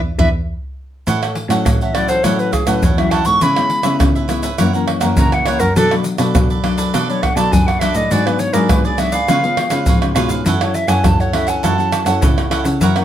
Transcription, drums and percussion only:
0.18 surdo loud
1.07 pandeiro medium
1.07 shaker medium
1.07 surdo medium
1.23 pandeiro soft
1.23 tamborim medium
1.23 shaker soft
1.35 pandeiro medium
1.50 pandeiro medium
1.50 tamborim medium
1.50 shaker medium
1.66 pandeiro medium
1.66 tamborim medium
1.66 shaker medium
1.66 surdo medium
1.81 pandeiro soft
1.81 shaker soft
1.95 pandeiro medium
1.95 tamborim medium
2.08 pandeiro medium
2.08 shaker medium
2.24 pandeiro medium
2.24 tamborim medium
2.24 shaker medium
2.24 surdo medium
2.39 pandeiro soft
2.39 shaker soft
2.53 pandeiro medium
2.53 tamborim medium
2.53 shaker medium
2.53 surdo medium
2.67 pandeiro medium
2.67 tamborim medium
2.67 shaker medium
2.83 pandeiro medium
2.83 shaker medium
2.83 surdo loud
2.98 pandeiro soft
2.98 tamborim medium
2.98 shaker soft
3.11 pandeiro medium
3.11 tamborim medium
3.25 pandeiro medium
3.25 shaker medium
3.41 pandeiro medium
3.41 shaker medium
3.41 surdo medium
3.56 pandeiro soft
3.56 tamborim medium
3.56 shaker soft
3.70 pandeiro medium
3.83 pandeiro medium
3.83 tamborim medium
3.83 shaker medium
4.00 pandeiro medium
4.00 tamborim medium
4.00 shaker medium
4.00 surdo loud
4.16 pandeiro soft
4.16 shaker soft
4.29 pandeiro medium
4.29 tamborim medium
4.29 shaker medium
4.43 pandeiro medium
4.43 shaker medium
4.58 pandeiro medium
4.58 tamborim medium
4.58 shaker medium
4.58 surdo medium
4.75 pandeiro soft
4.75 shaker soft
4.88 pandeiro medium
4.88 tamborim medium
5.01 pandeiro medium
5.01 tamborim medium
5.01 shaker medium
5.17 pandeiro medium
5.17 shaker medium
5.17 surdo loud
5.32 pandeiro soft
5.32 tamborim medium
5.32 shaker soft
5.46 pandeiro medium
5.46 tamborim medium
5.60 pandeiro medium
5.60 shaker medium
5.76 pandeiro medium
5.76 shaker medium
5.76 surdo medium
5.91 pandeiro soft
5.91 tamborim medium
5.91 shaker soft
6.04 pandeiro medium
6.04 shaker medium
6.18 pandeiro medium
6.18 tamborim medium
6.18 shaker medium
6.35 pandeiro medium
6.35 tamborim medium
6.35 shaker medium
6.35 surdo loud
6.50 pandeiro soft
6.50 shaker soft
6.64 pandeiro medium
6.64 tamborim medium
6.78 pandeiro medium
6.78 shaker medium
6.94 pandeiro medium
6.94 tamborim medium
6.94 shaker medium
6.94 surdo medium
7.09 pandeiro soft
7.09 shaker soft
7.23 pandeiro medium
7.23 tamborim medium
7.23 surdo medium
7.37 pandeiro medium
7.37 tamborim medium
7.37 shaker medium
7.53 pandeiro medium
7.53 shaker medium
7.53 surdo loud
7.68 pandeiro soft
7.68 tamborim medium
7.68 shaker soft
7.81 pandeiro medium
7.81 tamborim medium
7.81 shaker medium
7.95 pandeiro medium
7.95 shaker medium
8.11 pandeiro medium
8.11 shaker medium
8.11 surdo medium
8.27 pandeiro soft
8.27 tamborim medium
8.27 shaker soft
8.39 pandeiro medium
8.39 shaker medium
8.54 pandeiro medium
8.54 tamborim medium
8.54 shaker medium
8.69 pandeiro medium
8.69 tamborim medium
8.69 shaker medium
8.69 surdo loud
8.85 pandeiro soft
8.85 shaker soft
8.98 pandeiro medium
8.98 tamborim medium
8.98 shaker medium
9.12 pandeiro medium
9.12 shaker medium
9.28 pandeiro medium
9.28 tamborim medium
9.28 shaker medium
9.28 surdo medium
9.44 pandeiro soft
9.44 shaker soft
9.57 pandeiro medium
9.57 tamborim medium
9.70 pandeiro medium
9.70 tamborim medium
9.70 shaker medium
9.86 pandeiro medium
9.86 shaker medium
9.86 surdo loud
10.02 pandeiro soft
10.02 tamborim medium
10.02 shaker soft
10.16 pandeiro medium
10.16 tamborim medium
10.16 shaker medium
10.29 pandeiro medium
10.29 shaker medium
10.46 pandeiro medium
10.46 shaker medium
10.46 surdo medium
10.61 pandeiro soft
10.61 tamborim medium
10.61 shaker soft
10.74 pandeiro medium
10.74 shaker medium
10.88 pandeiro medium
10.88 tamborim medium
10.88 shaker medium
11.04 pandeiro medium
11.04 tamborim medium
11.04 shaker medium
11.04 surdo loud
11.20 pandeiro soft
11.20 shaker soft
11.33 pandeiro medium
11.33 tamborim medium
11.48 pandeiro medium
11.48 shaker medium
11.64 pandeiro medium
11.64 tamborim medium
11.64 shaker medium
11.64 surdo medium
11.80 pandeiro soft
11.80 shaker soft
11.92 pandeiro medium
11.92 tamborim medium
11.92 shaker medium
12.06 pandeiro medium
12.06 tamborim medium
12.06 shaker medium
12.22 pandeiro medium
12.22 shaker medium
12.22 surdo loud
12.38 pandeiro soft
12.38 tamborim medium
12.38 shaker soft
12.51 pandeiro medium
12.51 tamborim medium
12.65 pandeiro medium
12.65 shaker medium
12.81 pandeiro medium
12.81 shaker medium
12.81 surdo medium
12.96 pandeiro soft
12.96 tamborim medium
12.96 shaker soft

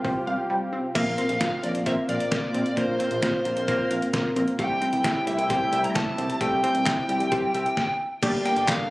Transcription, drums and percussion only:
0.05 kick loud
0.95 kick loud
0.95 closed hi-hat medium
0.95 crash medium
1.18 closed hi-hat medium
1.29 closed hi-hat medium
1.41 kick loud
1.41 snare loud
1.41 closed hi-hat medium
1.64 closed hi-hat medium
1.75 closed hi-hat medium
1.86 kick loud
1.86 closed hi-hat medium
2.09 closed hi-hat medium
2.20 closed hi-hat medium
2.32 kick loud
2.32 snare loud
2.32 closed hi-hat medium
2.54 closed hi-hat medium
2.66 closed hi-hat medium
2.77 kick loud
2.77 closed hi-hat medium
3.00 closed hi-hat medium
3.11 closed hi-hat medium
3.22 kick loud
3.22 snare loud
3.22 closed hi-hat medium
3.45 closed hi-hat medium
3.57 closed hi-hat medium
3.68 kick loud
3.68 closed hi-hat medium
3.91 closed hi-hat medium
4.02 closed hi-hat medium
4.13 kick loud
4.13 snare loud
4.13 closed hi-hat medium
4.36 closed hi-hat medium
4.48 closed hi-hat medium
4.59 kick loud
4.59 closed hi-hat medium
4.82 closed hi-hat medium
4.93 closed hi-hat medium
5.04 kick loud
5.04 snare loud
5.04 closed hi-hat medium
5.27 closed hi-hat medium
5.39 closed hi-hat medium
5.50 kick loud
5.50 closed hi-hat medium
5.73 closed hi-hat medium
5.84 closed hi-hat medium
5.95 kick loud
5.95 snare loud
5.95 closed hi-hat medium
6.18 closed hi-hat medium
6.30 closed hi-hat medium
6.41 kick loud
6.41 closed hi-hat medium
6.64 closed hi-hat medium
6.75 closed hi-hat medium
6.86 kick loud
6.86 snare loud
6.86 clap medium
6.86 closed hi-hat medium
7.09 closed hi-hat medium
7.20 closed hi-hat medium
7.32 kick loud
7.32 closed hi-hat medium
7.54 closed hi-hat medium
7.66 closed hi-hat medium
7.77 kick loud
7.77 snare medium
8.23 kick loud
8.23 closed hi-hat medium
8.23 crash loud
8.46 closed hi-hat medium
8.56 closed hi-hat medium
8.68 kick loud
8.68 snare loud
8.68 clap medium
8.68 closed hi-hat medium

